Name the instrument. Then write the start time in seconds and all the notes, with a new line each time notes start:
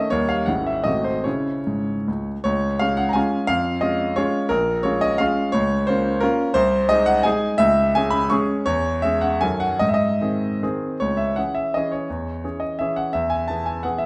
grand piano
Already playing: D#5
0.10 D#2 G3 A#3 D#4 C#5
0.29 F5
0.46 G#1 G#3 C#4 E4 F#5
0.66 E5
0.84 G#1 A3 C4 F#4 D#5
1.04 C5
1.24 C#3 C#4 E4 C#5
1.67 G#2
2.08 C#2
2.44 C#2 C#5
2.79 G#3 C#4 F4 F5
2.97 F#5
3.09 G#5 A#5
3.15 G#3 C#4 F4
3.47 F2 F5
3.81 G#3 C#4 F4 D#5
4.16 G#3 C#4 F4 C#5
4.49 A#1 A#4
4.83 G#3 C#4 F4 C#5
5.01 D#5
5.18 G#3 C#4 F4 F5
5.52 C#2 C#5
5.87 A#3 C#4 F4 C5
6.21 A#3 C#4 F4 A#4
6.54 C2 C5
6.89 G#3 D#4 G#4 D#5
7.06 F#5
7.23 G#3 D#4 G#4 G#5
7.58 C#2 E5
7.95 G#3 C#4 G#4 G#5
8.11 B5
8.30 G#3 C#4 G#4 C#6
8.66 E2 C#5
9.02 G#3 C#4 G#4 E5
9.21 F#5
9.41 F#2 D#3 C#4 A4 G#5
9.60 F#5
9.79 G#2 D#5
9.89 E5
9.94 D#5
10.21 D#3 C4 G#4
10.63 D#3 C4 G#4
11.00 C#2 C#5
11.17 E5
11.36 E3 C#4 G#4 F#5
11.55 E5
11.74 E3 C#4 G#4 D#5
11.92 C#5
12.10 E2
12.44 E3 C#4 G#4
12.60 D#5
12.79 E3 C#4 G#4 E5
12.96 F#5
13.13 E2 E5
13.30 G#5
13.48 E3 B3 G#4 A5
13.66 G#5
13.83 E3 B3 G#4 F#5
13.98 E5